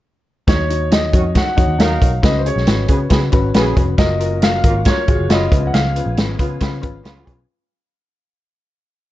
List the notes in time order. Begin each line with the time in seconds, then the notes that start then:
0.47 D#2 D#4 F#4 C#5, kick, snare, closed hi-hat
0.69 D#4 F#4 C#5, closed hi-hat
0.91 D#4 F#4 C#5 D#5, snare, closed hi-hat
1.12 F2 D#3 C#4 D#4 F#4 C#5, kick, closed hi-hat
1.34 D#3 C#4 D#4 F#4 C#5 F#5, kick, snare, closed hi-hat
1.56 F2 D#4 F#4 C#5, kick, closed hi-hat
1.67 D#2
1.78 D#2 F#3 D#4 F#4 A#4 C#5 F5, snare, closed hi-hat
2.00 B1 D#4 F#4 C#5, kick, closed hi-hat
2.22 C#2 C#4 F#4 B4 D#5, kick, snare, closed hi-hat
2.39 C5
2.44 C#4 F#4 G#4 C#5, closed hi-hat
2.56 B1, snare
2.66 G#1 C#4 F#4 B4, snare, closed hi-hat
2.88 C#3 B3 C#4 F#4 G#4 B4, kick, closed hi-hat
3.09 C#3 B3 C#4 F#4 G#4 B4, kick, snare, closed hi-hat
3.32 G#1 C#4 F#4 B4, kick, closed hi-hat
3.54 A#1 C#3 B3 C#4 F#4 G#4 B4, snare, closed hi-hat
3.76 F1 C#4 F#4 B4, kick, closed hi-hat
3.97 F#1 A#3 C#4 F4 F#4 A#4 D#5, kick, snare, closed hi-hat
4.19 F4 F#4 A#4, closed hi-hat
4.42 F4 F#4 A#4 F5, snare, closed hi-hat
4.63 G#1 C#3 A#3 F4 F#4 A#4, kick, closed hi-hat
4.85 C#3 A#3 F4 F#4 A#4 C#5, kick, snare, closed hi-hat
5.08 G#1 F4 F#4 G#4, kick, closed hi-hat
5.19 F#1
5.29 F#1 C#3 B3 F4 F#4 C#5 D#5, snare, closed hi-hat
5.51 C#2 F3 B3 C#4 E4 G#4 B4, kick, closed hi-hat
5.56 F4
5.67 F#5
5.74 C#2 F5, snare, closed hi-hat
5.95 C#4 F4 B4, closed hi-hat
6.06 A#1
6.17 G#1 C#4 F4 B4, snare, closed hi-hat
6.38 C#3 B3 C#4 F4 B4, kick, closed hi-hat
6.60 C#3 B3 C#4 F4 B4, kick, snare, closed hi-hat
6.81 G#1 C#4 F4 B4, kick, closed hi-hat
7.03 C#2 C#3 B3 C#4 F4 B4, snare, closed hi-hat
7.26 B1 C#4 F4 B4, kick, closed hi-hat